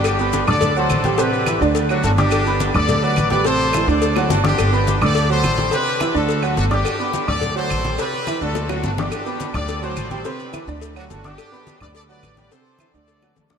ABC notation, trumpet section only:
X:1
M:4/4
L:1/8
Q:1/4=212
K:Dmix
V:1 name="Trumpet section"
[DG]3 [Ad]2 [Ac]3 | [GB]3 z2 [DF] [DF] [DG]- | [DG]3 [Ad]2 [Bd]2 [Bd] | [Ac]3 [Ad]3 [DF] [DG]- |
[DG]3 [Ad]2 [Ac]3 | [GB]3 [FA]2 [DF] [DF] [DG]- | [DG]3 [Ad]2 [Ac]3 | [GB]3 [FA]2 [DF] [DF] [DG]- |
[DG]3 [Ad]2 [Ac]2 [Ac] | [GB]3 z2 [DF] [DF] [DG]- | [DG]3 [Bd] [Ad] [Bd]2 [Bd] | [Ac]3 [Ad]4 z |]